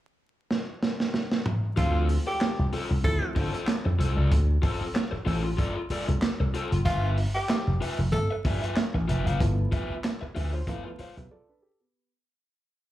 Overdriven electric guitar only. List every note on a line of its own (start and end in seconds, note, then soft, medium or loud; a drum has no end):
1.76 2.06 F4 medium
1.76 2.07 A4 medium
1.76 2.07 C5 medium
2.27 muted overdriven electric guitar stroke medium
2.41 muted overdriven electric guitar stroke soft
2.73 2.89 F4 medium
2.73 2.90 A4 medium
2.73 2.89 C5 medium
2.90 muted overdriven electric guitar stroke soft
3.04 muted overdriven electric guitar stroke soft
3.22 muted overdriven electric guitar stroke soft
3.35 3.52 F4 medium
3.35 3.53 A4 medium
3.35 3.52 C5 medium
3.53 3.67 F4 medium
3.53 3.67 A4 medium
3.53 3.66 C5 medium
3.68 muted overdriven electric guitar stroke soft
3.85 muted overdriven electric guitar stroke medium
3.99 4.16 F4 medium
3.99 4.16 A4 medium
3.99 4.16 C5 medium
4.17 4.31 F4 medium
4.17 4.30 A4 medium
4.17 4.30 D5 medium
4.62 4.83 F4 medium
4.62 4.84 A4 loud
4.62 4.84 C5 medium
4.94 muted overdriven electric guitar stroke soft
5.11 muted overdriven electric guitar stroke medium
5.25 5.47 F4 medium
5.25 5.44 A4 medium
5.25 5.42 C5 medium
5.44 muted overdriven electric guitar stroke soft
5.57 5.78 F4 medium
5.57 5.76 A4 medium
5.57 5.76 D5 medium
5.76 muted overdriven electric guitar stroke soft
5.91 6.07 F4 medium
5.91 6.07 A4 medium
5.91 6.08 D5 medium
6.08 muted overdriven electric guitar stroke soft
6.40 muted overdriven electric guitar stroke medium
6.54 6.75 F4 medium
6.54 6.72 A4 medium
6.54 6.71 C5 medium
6.72 muted overdriven electric guitar stroke soft
6.85 7.15 F4 medium
6.85 7.15 B4 medium
6.85 7.16 E5 medium
7.35 muted overdriven electric guitar stroke medium
7.49 muted overdriven electric guitar stroke soft
7.81 7.98 F4 medium
7.81 7.98 B4 medium
7.81 7.97 E5 medium
7.98 muted overdriven electric guitar stroke soft
8.13 muted overdriven electric guitar stroke soft
8.31 muted overdriven electric guitar stroke soft
8.45 8.61 F4 medium
8.45 8.62 B4 medium
8.45 8.61 E5 medium
8.62 8.76 F4 medium
8.62 8.76 B4 medium
8.62 8.75 E5 medium
8.77 muted overdriven electric guitar stroke soft
8.94 muted overdriven electric guitar stroke soft
9.08 9.25 F4 medium
9.08 9.25 B4 medium
9.08 9.26 E5 medium
9.26 9.40 F4 medium
9.26 9.40 B4 medium
9.26 9.39 F5 medium
9.72 9.92 F4 medium
9.72 9.93 B4 medium
9.72 9.93 E5 loud
10.04 muted overdriven electric guitar stroke soft
10.21 muted overdriven electric guitar stroke soft
10.35 10.56 F4 medium
10.35 10.53 B4 medium
10.35 10.52 E5 medium
10.53 muted overdriven electric guitar stroke medium
10.67 10.88 F4 medium
10.67 10.85 B4 medium
10.67 10.85 F5 medium
10.85 muted overdriven electric guitar stroke soft
10.99 11.15 F4 medium
10.99 11.16 B4 medium
10.99 11.16 F5 medium
11.17 muted overdriven electric guitar stroke medium